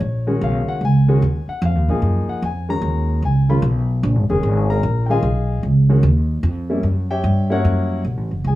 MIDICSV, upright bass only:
0, 0, Header, 1, 3, 480
1, 0, Start_track
1, 0, Tempo, 401338
1, 978, Time_signature, 3, 2, 24, 8
1, 10228, End_track
2, 0, Start_track
2, 0, Title_t, "Upright bass"
2, 0, Program_c, 0, 32
2, 5, Note_on_c, 0, 34, 81
2, 477, Note_off_c, 0, 34, 0
2, 495, Note_on_c, 0, 35, 94
2, 784, Note_off_c, 0, 35, 0
2, 968, Note_on_c, 0, 37, 80
2, 1439, Note_off_c, 0, 37, 0
2, 1461, Note_on_c, 0, 39, 88
2, 1749, Note_off_c, 0, 39, 0
2, 1934, Note_on_c, 0, 41, 102
2, 2096, Note_off_c, 0, 41, 0
2, 2096, Note_on_c, 0, 39, 46
2, 2246, Note_off_c, 0, 39, 0
2, 2253, Note_on_c, 0, 34, 59
2, 2405, Note_off_c, 0, 34, 0
2, 2415, Note_on_c, 0, 42, 81
2, 2706, Note_off_c, 0, 42, 0
2, 2898, Note_on_c, 0, 41, 87
2, 3360, Note_off_c, 0, 41, 0
2, 3367, Note_on_c, 0, 39, 91
2, 3840, Note_off_c, 0, 39, 0
2, 3855, Note_on_c, 0, 37, 78
2, 4324, Note_off_c, 0, 37, 0
2, 4331, Note_on_c, 0, 35, 95
2, 4802, Note_off_c, 0, 35, 0
2, 4823, Note_on_c, 0, 34, 97
2, 4979, Note_off_c, 0, 34, 0
2, 4979, Note_on_c, 0, 32, 53
2, 5129, Note_off_c, 0, 32, 0
2, 5136, Note_on_c, 0, 29, 69
2, 5288, Note_off_c, 0, 29, 0
2, 5299, Note_on_c, 0, 32, 86
2, 5766, Note_off_c, 0, 32, 0
2, 5778, Note_on_c, 0, 34, 93
2, 6242, Note_off_c, 0, 34, 0
2, 6249, Note_on_c, 0, 35, 90
2, 6721, Note_off_c, 0, 35, 0
2, 6734, Note_on_c, 0, 37, 88
2, 7203, Note_off_c, 0, 37, 0
2, 7211, Note_on_c, 0, 39, 101
2, 7681, Note_off_c, 0, 39, 0
2, 7690, Note_on_c, 0, 41, 95
2, 8160, Note_off_c, 0, 41, 0
2, 8171, Note_on_c, 0, 42, 89
2, 8640, Note_off_c, 0, 42, 0
2, 8655, Note_on_c, 0, 43, 100
2, 9122, Note_off_c, 0, 43, 0
2, 9143, Note_on_c, 0, 42, 92
2, 9606, Note_off_c, 0, 42, 0
2, 9621, Note_on_c, 0, 35, 80
2, 9770, Note_off_c, 0, 35, 0
2, 9770, Note_on_c, 0, 33, 44
2, 9934, Note_off_c, 0, 33, 0
2, 9940, Note_on_c, 0, 30, 60
2, 10088, Note_off_c, 0, 30, 0
2, 10099, Note_on_c, 0, 37, 81
2, 10228, Note_off_c, 0, 37, 0
2, 10228, End_track
3, 0, Start_track
3, 0, Title_t, "Muted upright bass strokes"
3, 805, Note_on_c, 9, 29, 42
3, 925, Note_off_c, 9, 29, 0
3, 1766, Note_on_c, 9, 29, 36
3, 1886, Note_off_c, 9, 29, 0
3, 2723, Note_on_c, 9, 29, 37
3, 2843, Note_off_c, 9, 29, 0
3, 10228, End_track
0, 0, End_of_file